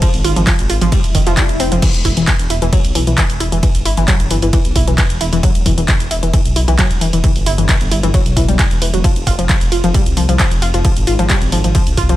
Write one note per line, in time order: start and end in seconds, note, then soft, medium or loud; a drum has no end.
0.02 0.07 F3 loud
0.02 kick loud
0.02 closed hi-hat medium
0.02 ride medium
0.14 0.22 G#1 medium
0.14 open hi-hat medium
0.24 0.34 G#1 loud
0.24 0.29 F4 medium
0.24 open hi-hat loud
0.36 0.45 G#1 loud
0.36 0.40 F3 medium
0.36 closed hi-hat medium
0.47 0.52 F3 medium
0.47 kick loud
0.47 clap loud
0.47 closed hi-hat medium
0.47 ride medium
0.59 0.67 G#1 medium
0.59 closed hi-hat medium
0.70 0.79 G#1 loud
0.70 0.74 F4 medium
0.70 open hi-hat loud
0.81 0.90 G#1 loud
0.81 0.84 F3 loud
0.81 closed hi-hat medium
0.92 0.97 G3 loud
0.92 kick loud
0.92 closed hi-hat medium
0.92 ride medium
0.92 swell medium
1.04 1.12 F1 medium
1.04 closed hi-hat medium
1.15 1.24 F1 loud
1.15 1.17 D#3 medium
1.15 kick medium
1.15 open hi-hat loud
1.27 1.35 F1 medium
1.27 1.31 F3 loud
1.27 closed hi-hat medium
1.37 1.42 G3 medium
1.37 kick loud
1.37 clap loud
1.37 closed hi-hat medium
1.37 ride medium
1.49 1.57 F1 medium
1.49 closed hi-hat medium
1.60 1.69 F1 loud
1.60 1.67 C4 loud
1.60 open hi-hat loud
1.72 1.80 F1 medium
1.72 1.76 F3 medium
1.72 closed hi-hat medium
1.82 1.87 E3 loud
1.82 kick loud
1.82 closed hi-hat medium
1.82 crash medium
1.82 ride medium
1.94 2.02 E1 medium
1.94 closed hi-hat medium
2.05 2.14 E1 loud
2.05 2.10 E4 medium
2.05 kick medium
2.05 open hi-hat loud
2.17 2.25 E1 loud
2.17 2.21 E3 medium
2.17 closed hi-hat medium
2.27 2.32 E3 medium
2.27 kick loud
2.27 clap loud
2.27 closed hi-hat medium
2.27 ride medium
2.39 2.48 E1 medium
2.39 closed hi-hat medium
2.50 2.59 E1 loud
2.50 2.55 E4 medium
2.50 open hi-hat loud
2.62 2.70 E1 medium
2.62 2.64 E3 loud
2.62 closed hi-hat medium
2.73 2.77 F#3 loud
2.73 kick loud
2.73 closed hi-hat medium
2.73 ride medium
2.84 2.93 B1 medium
2.84 closed hi-hat medium
2.95 3.04 B1 loud
2.95 3.00 E3 medium
2.95 open hi-hat loud
3.07 3.15 B1 medium
3.07 3.11 E3 medium
3.07 closed hi-hat medium
3.18 3.22 E3 loud
3.18 kick loud
3.18 clap loud
3.18 closed hi-hat medium
3.18 ride medium
3.30 3.38 E1 medium
3.30 closed hi-hat medium
3.40 3.49 E1 loud
3.40 3.45 E4 medium
3.40 open hi-hat loud
3.52 3.60 E1 loud
3.52 3.56 E3 medium
3.52 closed hi-hat medium
3.63 3.67 E3 medium
3.63 kick loud
3.63 closed hi-hat medium
3.63 ride medium
3.75 3.83 G1 medium
3.75 closed hi-hat medium
3.85 3.94 G1 loud
3.85 3.90 E4 medium
3.85 open hi-hat loud
3.97 4.05 G1 loud
3.97 4.00 E3 loud
3.97 closed hi-hat medium
4.08 4.13 F#3 loud
4.08 kick loud
4.08 clap loud
4.08 closed hi-hat medium
4.08 ride medium
4.20 4.28 G1 medium
4.20 closed hi-hat medium
4.30 4.40 G1 medium
4.30 4.35 E3 medium
4.30 open hi-hat loud
4.42 4.51 G1 medium
4.42 4.47 E3 medium
4.42 closed hi-hat medium
4.53 4.58 E3 loud
4.53 kick loud
4.53 closed hi-hat medium
4.53 ride medium
4.65 4.73 B1 medium
4.65 closed hi-hat medium
4.76 4.85 B1 loud
4.76 4.80 E4 medium
4.76 kick medium
4.76 open hi-hat loud
4.87 4.96 B1 medium
4.87 4.92 E3 medium
4.87 closed hi-hat medium
4.98 5.03 E3 medium
4.98 kick loud
4.98 clap loud
4.98 closed hi-hat medium
4.98 ride medium
5.10 5.18 E1 medium
5.10 closed hi-hat medium
5.21 5.30 E1 loud
5.21 5.25 E4 medium
5.21 open hi-hat loud
5.33 5.41 E1 medium
5.33 5.35 E3 loud
5.33 closed hi-hat medium
5.43 5.48 F#3 loud
5.43 kick loud
5.43 closed hi-hat medium
5.43 ride medium
5.55 5.63 E1 medium
5.55 closed hi-hat medium
5.66 5.75 E1 loud
5.66 5.70 E3 medium
5.66 kick medium
5.66 open hi-hat loud
5.78 5.86 E1 medium
5.78 5.82 E3 medium
5.78 closed hi-hat medium
5.88 5.93 E3 loud
5.88 kick loud
5.88 clap loud
5.88 closed hi-hat medium
5.88 ride medium
6.00 6.08 E1 medium
6.00 closed hi-hat medium
6.11 6.20 E1 loud
6.11 6.16 E4 medium
6.11 open hi-hat loud
6.23 6.31 E1 medium
6.23 6.27 E3 medium
6.23 closed hi-hat medium
6.33 6.38 E3 medium
6.33 kick loud
6.33 closed hi-hat medium
6.33 ride medium
6.45 6.54 B1 medium
6.45 closed hi-hat medium
6.56 6.65 B1 loud
6.56 6.61 E4 medium
6.56 open hi-hat loud
6.68 6.76 B1 medium
6.68 6.70 E3 loud
6.68 closed hi-hat medium
6.78 6.83 F#3 loud
6.78 kick loud
6.78 clap loud
6.78 closed hi-hat medium
6.78 ride medium
6.91 6.99 E1 medium
6.91 closed hi-hat medium
7.01 7.10 E1 loud
7.01 7.06 E3 medium
7.01 open hi-hat loud
7.13 7.21 E1 loud
7.13 7.17 E3 medium
7.13 closed hi-hat medium
7.24 7.28 E3 loud
7.24 kick loud
7.24 closed hi-hat medium
7.24 ride medium
7.36 7.44 G1 medium
7.36 open hi-hat medium
7.46 7.55 G1 loud
7.46 7.51 E4 medium
7.46 open hi-hat loud
7.58 7.66 G1 loud
7.58 7.62 E3 medium
7.58 closed hi-hat medium
7.69 7.73 E3 medium
7.69 kick loud
7.69 clap loud
7.69 closed hi-hat medium
7.69 ride medium
7.81 7.89 G1 medium
7.81 closed hi-hat medium
7.91 8.01 G1 medium
7.91 7.96 E4 medium
7.91 open hi-hat loud
8.03 8.11 G1 medium
8.03 8.06 E3 loud
8.03 closed hi-hat medium
8.14 8.19 F#3 loud
8.14 kick loud
8.14 closed hi-hat medium
8.14 ride medium
8.26 8.34 B1 medium
8.26 closed hi-hat medium
8.36 8.46 B1 loud
8.36 8.39 E3 medium
8.36 kick medium
8.36 open hi-hat loud
8.48 8.57 B1 medium
8.48 8.53 G3 medium
8.48 closed hi-hat medium
8.59 8.62 E3 medium
8.59 kick loud
8.59 clap loud
8.59 closed hi-hat medium
8.59 ride medium
8.71 8.79 E1 medium
8.71 closed hi-hat medium
8.82 8.91 E1 loud
8.82 8.84 E3 medium
8.82 open hi-hat loud
8.94 9.02 E1 loud
8.94 8.98 F#3 medium
8.94 closed hi-hat medium
9.04 9.09 F3 loud
9.04 kick loud
9.04 closed hi-hat medium
9.04 ride medium
9.16 9.24 F1 medium
9.16 closed hi-hat medium
9.27 9.36 F1 loud
9.27 9.31 F4 medium
9.27 kick medium
9.27 open hi-hat loud
9.39 9.47 F1 loud
9.39 9.43 F3 medium
9.39 closed hi-hat medium
9.49 9.54 F3 medium
9.49 kick loud
9.49 clap loud
9.49 closed hi-hat medium
9.49 ride medium
9.61 9.69 F1 medium
9.61 closed hi-hat medium
9.72 9.81 F1 medium
9.72 9.76 F4 medium
9.72 open hi-hat loud
9.84 9.92 F1 loud
9.84 9.86 F3 loud
9.84 closed hi-hat medium
9.94 9.99 G3 loud
9.94 kick loud
9.94 closed hi-hat medium
9.94 ride medium
10.06 10.14 C2 medium
10.06 closed hi-hat medium
10.17 10.26 C2 loud
10.17 10.22 F3 medium
10.17 open hi-hat loud
10.29 10.37 C2 medium
10.29 10.33 F3 medium
10.29 closed hi-hat medium
10.39 10.44 F3 loud
10.39 kick loud
10.39 clap loud
10.39 closed hi-hat medium
10.39 ride medium
10.51 10.60 F1 medium
10.51 closed hi-hat medium
10.62 10.71 F1 medium
10.62 10.67 F4 medium
10.62 open hi-hat loud
10.74 10.82 F1 medium
10.74 10.78 F3 medium
10.74 closed hi-hat medium
10.85 10.89 F3 medium
10.85 kick loud
10.85 closed hi-hat medium
10.85 ride medium
10.97 11.05 G#1 medium
10.97 closed hi-hat medium
11.07 11.16 G#1 loud
11.07 11.12 F4 medium
11.07 open hi-hat loud
11.19 11.27 G#1 medium
11.19 11.22 F3 loud
11.19 closed hi-hat medium
11.30 11.34 G3 loud
11.30 kick loud
11.30 clap loud
11.30 closed hi-hat medium
11.30 ride medium
11.42 11.50 G#1 medium
11.42 closed hi-hat medium
11.52 11.61 G#1 loud
11.52 11.57 F3 medium
11.52 open hi-hat loud
11.64 11.72 G#1 medium
11.64 11.68 F3 medium
11.64 closed hi-hat medium
11.75 11.79 F3 loud
11.75 kick loud
11.75 closed hi-hat medium
11.75 ride medium
11.87 11.95 C2 medium
11.87 closed hi-hat medium
11.97 12.06 C2 medium
11.97 12.02 F4 medium
11.97 kick medium
11.97 open hi-hat loud
12.09 12.16 C2 medium
12.09 12.13 F3 medium
12.09 closed hi-hat medium